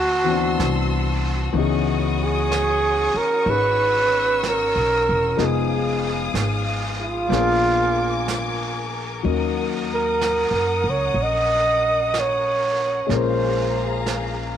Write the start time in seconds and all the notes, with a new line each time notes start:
Already playing: D2 F#4 A5 C6 E6
0.24 E3 B3 C4
0.29 D4 F#4
0.59 C2, brush sweep, snare, hi-hat pedal
1.53 C#2 E3 B3 C#4 C#5 C#6 D#6, brush sweep
1.57 D#4 G#4
2.23 G#4
2.52 brush sweep, snare, hi-hat pedal
3.14 A#4, muted upright bass stroke
3.46 G#1 C#4 D#4 G#4 B4 E6, brush sweep
4.43 brush sweep, snare, hi-hat pedal
4.48 A#4
4.76 B1
5.09 E1
5.36 F1 F3 G#3 B3 D#4 G#4 F5 D#6, brush sweep, snare
5.41 G#4
6.34 G#1, brush sweep, snare, hi-hat pedal
7.01 F4
7.27 A#1 F3 A#3 B3 D4 A#4 G#5 D6
7.32 G#4, brush sweep, snare
8.28 brush sweep, snare, hi-hat pedal
9.21 D#2 F#3 A#3 C#4 D#4 A#4 F#5 D#6, brush sweep
9.94 A#4
10.21 brush sweep, snare, hi-hat pedal
10.51 F#2
10.84 C#2
10.90 C#5
11.14 A#1, brush sweep
11.22 D#5
12.14 brush sweep, snare, hi-hat pedal
12.20 C#5
13.07 A#1 G#3 A#3 C#4 G#4 F5 A#5, brush sweep, snare
13.11 F4 A#4
13.17 C5
14.06 brush sweep, snare, hi-hat pedal